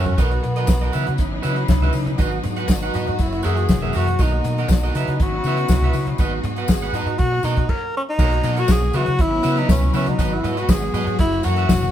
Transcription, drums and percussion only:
0.06 floor tom, high conga
0.18 kick, closed hi-hat, tambourine, muted conga
0.31 closed hi-hat
0.43 closed hi-hat, muted conga
0.56 closed hi-hat
0.67 kick, snare, tambourine, high conga
0.93 closed hi-hat, tambourine, muted conga
1.07 closed hi-hat
1.18 kick, closed hi-hat, tambourine
1.43 closed hi-hat, tambourine
1.56 closed hi-hat
1.68 kick, snare, tambourine, high conga
1.82 closed hi-hat, high conga
1.93 open hi-hat, tambourine
2.06 closed hi-hat, high conga
2.18 kick, closed hi-hat, tambourine, muted conga
2.44 closed hi-hat, tambourine, muted conga
2.56 closed hi-hat
2.68 kick, snare, tambourine, high conga
2.94 closed hi-hat, tambourine, muted conga
3.07 closed hi-hat
3.19 kick, closed hi-hat, tambourine
3.32 closed hi-hat
3.43 closed hi-hat, tambourine
3.57 closed hi-hat
3.69 kick, snare, tambourine, high conga
3.83 high conga
3.93 open hi-hat, tambourine
4.07 closed hi-hat, high conga
4.19 kick, closed hi-hat, tambourine, muted conga
4.44 closed hi-hat, tambourine, muted conga
4.58 closed hi-hat
4.68 kick, snare, tambourine, high conga
4.95 closed hi-hat, tambourine
5.07 closed hi-hat
5.20 kick, closed hi-hat
5.44 closed hi-hat, tambourine
5.57 closed hi-hat
5.68 kick, snare, tambourine, high conga
5.82 high conga
5.93 open hi-hat, tambourine
6.07 closed hi-hat, high conga
6.18 kick, closed hi-hat, tambourine, muted conga
6.44 closed hi-hat, muted conga
6.56 closed hi-hat
6.68 kick, snare, tambourine, high conga
6.94 closed hi-hat, tambourine
7.06 closed hi-hat
7.18 kick, closed hi-hat, tambourine
7.43 closed hi-hat, tambourine
7.57 kick, closed hi-hat
7.69 kick, crash
8.19 kick, crash, tambourine, muted conga
8.32 closed hi-hat
8.43 closed hi-hat, tambourine, muted conga
8.57 closed hi-hat
8.68 kick, snare, tambourine, high conga
8.93 closed hi-hat, tambourine, muted conga
9.06 closed hi-hat
9.19 kick, closed hi-hat
9.43 closed hi-hat, tambourine
9.57 closed hi-hat
9.69 kick, snare, tambourine, high conga
9.84 high conga
9.94 open hi-hat, tambourine
10.07 closed hi-hat, high conga
10.19 kick, closed hi-hat, tambourine, muted conga
10.44 closed hi-hat, tambourine, muted conga
10.57 closed hi-hat
10.69 kick, snare, tambourine, high conga
10.94 closed hi-hat, tambourine, muted conga
11.07 closed hi-hat
11.19 kick, closed hi-hat
11.32 closed hi-hat
11.43 closed hi-hat, tambourine
11.56 closed hi-hat
11.69 kick, snare, tambourine, high conga
11.83 closed hi-hat, high conga

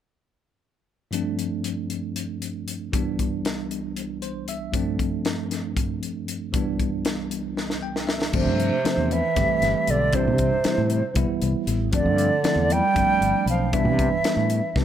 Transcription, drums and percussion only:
1.13 closed hi-hat
1.39 closed hi-hat
1.64 closed hi-hat
1.90 closed hi-hat
2.16 closed hi-hat
2.42 closed hi-hat
2.68 closed hi-hat
2.93 kick, closed hi-hat
3.19 kick, closed hi-hat
3.45 snare, closed hi-hat
3.71 closed hi-hat
3.97 closed hi-hat
4.22 closed hi-hat
4.48 closed hi-hat
4.74 kick, closed hi-hat
4.99 kick, closed hi-hat
5.25 snare, closed hi-hat
5.51 snare, closed hi-hat
5.77 kick, closed hi-hat
6.03 closed hi-hat
6.28 closed hi-hat
6.54 kick, closed hi-hat
6.80 kick, closed hi-hat
7.05 snare, closed hi-hat
7.31 closed hi-hat
7.57 snare
7.70 snare
7.96 snare
8.09 snare
8.22 snare
8.33 kick, crash
8.60 closed hi-hat
8.85 snare, closed hi-hat
9.11 closed hi-hat
9.36 kick, snare, closed hi-hat
9.62 snare, closed hi-hat
9.87 closed hi-hat
10.13 kick, closed hi-hat
10.38 kick, closed hi-hat
10.64 snare, closed hi-hat
10.90 closed hi-hat
11.15 kick, closed hi-hat
11.42 closed hi-hat
11.67 closed hi-hat
11.93 kick, closed hi-hat
12.18 closed hi-hat
12.44 snare, closed hi-hat
12.70 closed hi-hat
12.96 kick, closed hi-hat
13.22 closed hi-hat
13.47 closed hi-hat
13.73 kick, closed hi-hat
13.99 kick, closed hi-hat
14.24 snare, closed hi-hat
14.50 closed hi-hat
14.76 kick, snare

